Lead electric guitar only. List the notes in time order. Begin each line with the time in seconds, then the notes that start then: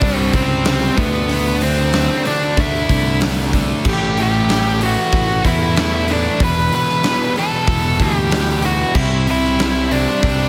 Already playing: D4 D5
0.17 C5
0.35 C4 C5
0.98 B3 B4
1.62 C4 C5
2.27 D4 D5
2.60 E4 E5
3.89 G4 G5
4.20 G4 G5
4.83 F#4 F#5
5.46 E4 E5
5.78 E4 E5
6.11 D4 D5
6.43 B4 B5
6.74 B4 B5
7.38 A4 A5
8.03 G4 G5
8.65 F#4 F#5
8.95 E4 E5
9.30 E4 E5
9.92 D4 D5